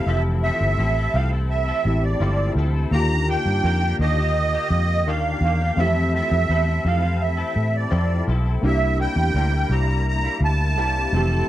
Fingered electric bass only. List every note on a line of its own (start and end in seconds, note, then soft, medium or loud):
0.06 0.49 F1 loud
0.61 0.75 G1 medium
0.78 1.07 A1 medium
1.14 1.71 C2 medium
1.85 2.14 A1 loud
2.20 2.49 G1 medium
2.55 2.84 D2 loud
2.91 3.35 D#2 loud
3.46 3.60 G2 medium
3.64 3.92 F2 medium
3.99 4.56 D#2 medium
4.70 5.05 F2 loud
5.05 5.34 D#2 loud
5.41 5.70 E2 loud
5.77 6.20 F2 loud
6.32 6.46 F2 medium
6.49 6.78 E2 medium
6.85 7.42 F2 medium
7.56 7.85 A2 medium
7.92 8.21 F2 loud
8.28 8.56 B1 medium
8.63 9.06 C2 medium
9.16 9.31 E2 medium
9.34 9.63 D2 medium
9.69 10.27 C2 medium
10.41 10.77 D2 medium
10.77 11.06 C2 medium
11.13 11.42 F1 loud